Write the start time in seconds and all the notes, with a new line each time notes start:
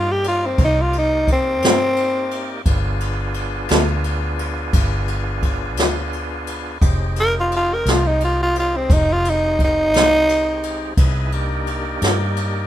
Already playing: G2 A#3 D#4 F4 G4 D5
0.12 G4
0.24 F4, ride
0.46 C4
0.58 C2, kick, ride
0.64 D#4
0.82 F4
0.93 ride
0.99 D#4
1.28 kick, ride
1.32 C4
1.62 G2, snare, ride
1.96 ride
2.31 ride
2.66 G1 B3 D4 F4 G#4, kick, ride
3.00 ride
3.34 ride
3.69 D2, snare, ride
4.04 ride
4.39 ride
4.73 G1, kick, ride
5.08 ride
5.43 kick, ride
5.77 D2, snare, ride
6.13 ride
6.47 ride
6.81 F1 G#3 C4 D#4 G4, kick, ride
7.16 ride
7.20 A#4
7.40 F4
7.52 ride
7.57 F4
7.74 A#4
7.86 C2, snare, ride
7.90 F4
8.07 D#4
8.21 F4, ride
8.43 F4
8.56 F4, ride
8.77 C4
8.90 F1 D#4, kick, ride
9.13 F4
9.25 ride
9.30 D#4
9.59 kick, ride
9.64 D#4
9.94 C2, snare, ride
10.29 ride
10.63 ride
10.97 C2 B3 D#4 E4 G#4, kick, ride
11.32 A#3 D4 D#4 G4, ride
11.67 ride
12.02 G2, snare, ride
12.37 ride